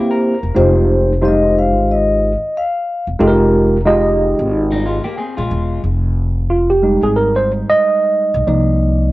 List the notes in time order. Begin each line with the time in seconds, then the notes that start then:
Already playing: A#3 C4 E4 G4 C5
0.11 A#4
0.43 E1
0.55 F1 G#3 D#4 F4 G4 C5
0.59 C5
1.22 G3 D#4 F4 G4 C5 D#5
1.28 G#3
1.59 F5
1.75 G#1
1.91 D#5
2.57 F5
3.07 E1
3.19 F1 G#3 D#4 F4 G4 A4
3.28 A#4
3.85 G#3 D#4 F4 G4 D#5
4.39 G#1
4.72 G3 D#4
4.86 G#3 F4
5.04 A#3 G4
5.17 C4 G#4
5.37 A#1 G#3 F4
5.51 E1
5.84 F1
6.50 F4
6.70 G4
6.82 G3 G#3 D#4
7.02 G#1 G#4
7.16 A#4
7.36 C5
7.70 D#5
8.34 B1
8.47 C2 F3 A#3 D#4 D5